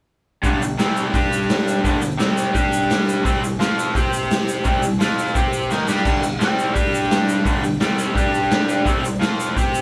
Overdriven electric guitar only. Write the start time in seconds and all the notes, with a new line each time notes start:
0.42 G2 D3 G3
0.61 G2 D3
0.78 C3 G3 C4
1.12 G3 D4 G4
1.82 G2 D3 G3
2.02 G2 D3
2.17 C3 G3 C4
2.53 G3 D4 G4
3.24 C3 G3 C4
3.41 C3 G3
3.59 F3 C4 F4
3.95 C4 G4 C5
4.65 C3 G3 C4
4.82 C3 G3
5.00 F3 C4 F4
5.35 C4 G4 C5
5.70 D#3 A#3 D#4
5.88 G3 D4 G4
6.04 G2 D3 G3
6.23 G2 D3
6.38 C3 G3 C4
6.73 G3 D4 G4
7.44 G2 D3 G3
7.63 G2 D3
7.80 C3 G3 C4
8.14 G3 D4 G4
8.85 C3 G3 C4
9.03 C3 G3
9.19 F3 C4 F4
9.55 C4 G4 C5